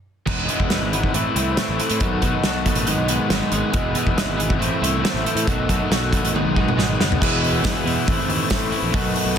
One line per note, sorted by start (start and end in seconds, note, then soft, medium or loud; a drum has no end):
0.26 0.47 E1 medium
0.26 0.47 E2 loud
0.26 0.48 B2 loud
0.26 0.48 E3 loud
0.26 0.48 G#3 loud
0.26 0.50 B3 loud
0.26 0.49 D#4 loud
0.26 0.50 E4 loud
0.26 1.13 G#4 medium
0.26 0.50 B4 loud
0.26 1.13 D#5 medium
0.26 1.99 E5 medium
0.26 1.13 B5 medium
0.26 kick loud
0.26 crash loud
0.48 0.69 E2 medium
0.48 0.69 B2 medium
0.48 0.69 E3 medium
0.48 0.70 G#3 medium
0.48 0.71 B3 medium
0.48 0.69 D#4 medium
0.48 0.71 E4 medium
0.48 0.71 B4 medium
0.48 closed hi-hat medium
0.59 0.79 E1 medium
0.59 kick medium
0.70 0.90 E2 medium
0.70 0.91 B2 medium
0.70 0.92 E3 medium
0.70 0.92 G#3 medium
0.70 0.93 B3 medium
0.70 0.92 D#4 medium
0.70 0.93 E4 medium
0.70 0.93 B4 medium
0.70 snare loud
0.70 closed hi-hat medium
0.81 1.11 G#1 medium
0.91 1.12 E2 medium
0.91 1.12 B2 loud
0.91 1.13 E3 medium
0.91 1.12 G#3 medium
0.91 1.14 B3 loud
0.91 1.13 D#4 medium
0.91 1.13 E4 loud
0.91 1.15 B4 loud
0.91 closed hi-hat medium
1.03 kick medium
1.13 1.24 A1 loud
1.13 1.34 A2 medium
1.13 1.34 E3 loud
1.13 1.35 A3 medium
1.13 1.36 C4 medium
1.13 1.36 E4 loud
1.13 2.86 A4 medium
1.13 1.36 B4 loud
1.13 2.00 C5 medium
1.13 7.17 B5 loud
1.13 closed hi-hat medium
1.35 1.56 C2 loud
1.35 1.56 A2 medium
1.35 1.56 E3 medium
1.35 1.57 A3 medium
1.35 1.58 C4 medium
1.35 1.58 E4 medium
1.35 1.58 B4 medium
1.35 closed hi-hat medium
1.57 1.78 A2 medium
1.57 1.79 E3 loud
1.57 1.79 A3 medium
1.57 1.79 C4 medium
1.57 1.80 E4 loud
1.57 1.79 B4 loud
1.57 snare loud
1.57 closed hi-hat medium
1.69 1.78 A1 medium
1.79 1.99 A2 medium
1.79 2.00 E3 medium
1.79 2.00 A3 medium
1.79 2.00 C4 medium
1.79 2.00 E4 medium
1.79 2.02 B4 medium
1.79 closed hi-hat medium
1.90 2.00 A2 medium
1.90 closed hi-hat medium
2.00 2.21 B1 medium
2.00 2.22 B2 medium
2.00 2.23 D#3 loud
2.00 2.21 F#3 loud
2.00 2.23 A3 loud
2.00 2.24 B3 loud
2.00 2.22 D#4 loud
2.00 2.23 F#4 loud
2.00 2.22 A4 loud
2.00 2.86 D#5 medium
2.00 3.72 F#5 medium
2.00 kick loud
2.00 closed hi-hat medium
2.22 2.32 B1 medium
2.22 2.43 B2 medium
2.22 2.44 D#3 medium
2.22 2.44 F#3 medium
2.22 2.44 A3 medium
2.22 2.45 B3 loud
2.22 2.44 D#4 medium
2.22 2.46 F#4 medium
2.22 2.45 A4 medium
2.22 kick medium
2.22 closed hi-hat medium
2.44 2.74 B1 medium
2.44 2.64 B2 medium
2.44 2.65 D#3 medium
2.44 2.65 F#3 medium
2.44 2.65 A3 medium
2.44 2.67 B3 medium
2.44 2.65 D#4 medium
2.44 2.66 F#4 loud
2.44 2.65 A4 loud
2.44 snare loud
2.44 closed hi-hat medium
2.65 2.86 B2 loud
2.65 2.86 D#3 loud
2.65 2.86 F#3 medium
2.65 2.86 A3 loud
2.65 2.88 B3 loud
2.65 2.86 D#4 medium
2.65 2.87 F#4 medium
2.65 2.86 A4 medium
2.65 kick medium
2.65 closed hi-hat medium
2.75 2.86 A1 medium
2.75 closed hi-hat medium
2.86 2.97 G#1 medium
2.86 3.07 G#2 medium
2.86 3.08 D#3 loud
2.86 3.07 F#3 medium
2.86 3.09 G#3 medium
2.86 3.10 B3 medium
2.86 3.09 D#4 loud
2.86 4.59 G#4 medium
2.86 3.10 G#4 loud
2.86 4.59 D#5 medium
2.86 closed hi-hat medium
2.98 3.18 B1 medium
3.08 3.29 G#2 medium
3.08 3.29 D#3 medium
3.08 3.30 F#3 medium
3.08 3.30 G#3 medium
3.08 3.31 B3 medium
3.08 3.30 D#4 medium
3.08 3.32 G#4 medium
3.08 closed hi-hat medium
3.30 3.40 G#1 medium
3.30 3.50 G#2 medium
3.30 3.51 D#3 loud
3.30 3.51 F#3 loud
3.30 3.51 G#3 medium
3.30 3.53 B3 medium
3.30 3.52 D#4 loud
3.30 3.53 G#4 medium
3.30 snare loud
3.30 closed hi-hat medium
3.51 3.62 G#1 medium
3.51 3.72 G#2 medium
3.51 3.73 D#3 medium
3.51 3.72 F#3 medium
3.51 3.73 G#3 medium
3.51 3.74 B3 medium
3.51 3.73 D#4 medium
3.51 3.73 G#4 loud
3.51 closed hi-hat medium
3.73 3.94 E1 loud
3.73 3.93 E2 loud
3.73 3.93 B2 medium
3.73 3.94 E3 medium
3.73 3.95 G#3 loud
3.73 3.96 B3 medium
3.73 3.94 D#4 loud
3.73 3.95 E4 medium
3.73 3.96 G#4 loud
3.73 5.45 E5 medium
3.73 kick loud
3.73 closed hi-hat medium
3.94 4.15 E2 medium
3.94 4.15 B2 medium
3.94 4.15 E3 medium
3.94 4.16 G#3 medium
3.94 4.17 B3 loud
3.94 4.16 D#4 loud
3.94 4.17 E4 medium
3.94 4.17 G#4 medium
3.94 closed hi-hat medium
4.06 4.26 E1 loud
4.06 kick medium
4.16 4.36 E2 medium
4.16 4.35 B2 medium
4.16 4.37 E3 medium
4.16 4.37 G#3 medium
4.16 4.39 B3 medium
4.16 4.36 D#4 medium
4.16 4.38 E4 medium
4.16 4.39 G#4 medium
4.16 snare loud
4.16 closed hi-hat medium
4.27 4.58 G#1 medium
4.37 4.58 E2 loud
4.37 4.58 B2 medium
4.37 4.58 E3 medium
4.37 4.58 G#3 loud
4.37 4.59 B3 loud
4.37 4.59 D#4 loud
4.37 4.59 E4 medium
4.37 4.60 G#4 loud
4.37 closed hi-hat medium
4.50 kick medium
4.59 4.70 A1 loud
4.59 4.80 A2 loud
4.59 4.80 E3 loud
4.59 4.80 A3 medium
4.59 4.81 B3 loud
4.59 4.81 C4 loud
4.59 4.82 E4 loud
4.59 6.31 A4 medium
4.59 4.81 A4 loud
4.59 5.46 C5 medium
4.59 closed hi-hat medium
4.81 5.02 C2 loud
4.81 5.01 A2 medium
4.81 5.02 E3 medium
4.81 5.01 A3 medium
4.81 5.03 B3 medium
4.81 5.02 C4 medium
4.81 5.03 E4 medium
4.81 5.03 A4 medium
4.81 closed hi-hat medium
5.02 5.22 A2 loud
5.02 5.24 E3 loud
5.02 5.23 A3 medium
5.02 5.26 B3 loud
5.02 5.24 C4 loud
5.02 5.24 E4 medium
5.02 5.24 A4 medium
5.02 snare loud
5.02 closed hi-hat medium
5.14 5.24 A1 loud
5.14 snare soft
5.23 5.45 A2 medium
5.23 5.46 E3 medium
5.23 5.45 A3 medium
5.23 5.47 B3 loud
5.23 5.46 C4 medium
5.23 5.45 E4 medium
5.23 5.46 A4 medium
5.23 closed hi-hat medium
5.35 5.46 A2 loud
5.35 closed hi-hat medium
5.44 5.67 B1 medium
5.44 5.66 B2 loud
5.44 5.66 D#3 loud
5.44 5.67 F#3 loud
5.44 5.69 A3 loud
5.44 5.68 B3 loud
5.44 5.68 D#4 loud
5.44 6.32 D#5 medium
5.44 6.31 F#5 medium
5.44 kick loud
5.44 closed hi-hat medium
5.48 5.69 F#4 loud
5.48 5.68 A4 loud
5.67 5.79 B1 medium
5.67 5.88 B2 medium
5.67 5.88 D#3 medium
5.67 5.88 F#3 medium
5.67 5.90 A3 medium
5.67 5.89 B3 loud
5.67 5.90 D#4 loud
5.67 5.91 F#4 medium
5.67 5.90 A4 loud
5.67 kick medium
5.67 closed hi-hat medium
5.89 6.20 B1 loud
5.89 6.10 B2 medium
5.89 6.11 D#3 medium
5.89 6.11 F#3 medium
5.89 6.11 A3 medium
5.89 6.12 B3 medium
5.89 6.12 D#4 medium
5.89 6.12 F#4 medium
5.89 6.12 A4 loud
5.89 snare loud
5.89 closed hi-hat medium
6.11 6.32 B2 loud
6.11 6.32 D#3 medium
6.11 6.33 F#3 loud
6.11 6.32 A3 medium
6.11 6.33 B3 loud
6.11 6.33 D#4 loud
6.11 6.33 F#4 loud
6.11 6.33 A4 loud
6.11 kick medium
6.11 closed hi-hat medium
6.23 6.33 A1 medium
6.23 closed hi-hat medium
6.33 6.43 G#1 loud
6.33 6.54 G#2 medium
6.33 6.55 D#3 loud
6.33 6.54 F#3 medium
6.33 6.55 G#3 medium
6.33 6.55 B3 loud
6.33 6.56 D#4 loud
6.33 7.19 G#4 medium
6.33 6.56 G#4 loud
6.33 7.19 D#5 medium
6.33 7.20 F#5 medium
6.33 high tom medium
6.45 6.65 B1 medium
6.55 6.76 G#2 medium
6.55 6.76 D#3 medium
6.55 6.76 F#3 medium
6.55 6.77 G#3 medium
6.55 6.77 B3 loud
6.55 6.78 D#4 medium
6.55 6.79 G#4 medium
6.55 kick medium
6.68 mid tom medium
6.77 6.97 G#1 medium
6.77 6.97 G#2 loud
6.77 6.98 D#3 loud
6.77 6.98 F#3 loud
6.77 6.99 G#3 medium
6.77 6.99 B3 loud
6.77 7.00 D#4 medium
6.77 7.00 G#4 loud
6.77 snare medium
6.99 7.19 F#1 medium
6.99 7.18 G#2 medium
6.99 7.19 D#3 medium
6.99 7.19 F#3 medium
6.99 7.19 G#3 medium
6.99 7.20 B3 medium
6.99 7.20 D#4 medium
6.99 7.20 G#4 medium
6.99 snare loud
7.12 floor tom loud
7.19 7.61 E1 loud
7.19 7.84 E2 medium
7.19 7.85 B2 loud
7.19 7.61 E3 loud
7.19 7.62 G#3 loud
7.19 7.64 B3 loud
7.19 7.64 E4 loud
7.19 8.06 G#4 medium
7.19 7.64 G#4 loud
7.19 8.06 D#5 medium
7.19 8.92 E5 medium
7.19 9.38 B5 medium
7.19 kick loud
7.19 crash loud
7.44 open hi-hat medium
7.62 7.74 E1 medium
7.62 8.05 E2 loud
7.62 8.05 B2 loud
7.62 8.05 E3 medium
7.62 8.05 G#3 medium
7.62 8.08 B3 medium
7.62 8.06 E4 medium
7.62 7.84 G#4 medium
7.62 kick loud
7.62 snare loud
7.62 open hi-hat medium
7.62 tambourine medium
7.85 7.95 E2 medium
7.85 8.06 E3 medium
7.85 8.07 B3 medium
7.85 8.06 D#4 medium
7.85 8.05 G#4 medium
7.85 open hi-hat medium
8.05 8.17 A1 loud
8.05 8.47 A2 loud
8.05 8.49 E3 loud
8.05 8.30 A3 loud
8.05 8.29 C4 medium
8.05 8.27 E4 loud
8.05 8.93 C5 medium
8.05 kick loud
8.05 open hi-hat medium
8.10 9.38 A4 medium
8.28 8.38 D#2 medium
8.28 8.49 A3 medium
8.28 8.50 C4 medium
8.28 8.51 E4 medium
8.28 open hi-hat medium
8.49 8.60 A1 medium
8.49 8.91 A2 medium
8.49 8.92 E3 loud
8.49 8.73 A3 loud
8.49 8.72 C4 loud
8.49 8.70 E4 medium
8.49 kick loud
8.49 snare loud
8.49 open hi-hat medium
8.49 tambourine loud
8.61 8.71 A1 medium
8.71 8.93 A3 medium
8.71 8.94 B3 medium
8.71 8.93 C4 medium
8.71 8.91 E4 medium
8.71 open hi-hat medium
8.82 8.92 A#1 medium
8.93 9.14 B1 medium
8.93 9.38 B2 loud
8.93 9.34 D#3 loud
8.93 9.35 F#3 loud
8.93 9.35 A3 loud
8.93 9.37 B3 loud
8.93 9.36 D#4 loud
8.93 9.37 F#4 loud
8.93 9.36 A4 loud
8.93 9.38 D#5 medium
8.93 9.38 F#5 medium
8.93 kick loud
8.93 open hi-hat medium
9.16 open hi-hat medium
9.25 9.38 B1 medium
9.35 9.38 B2 medium
9.35 9.38 D#3 medium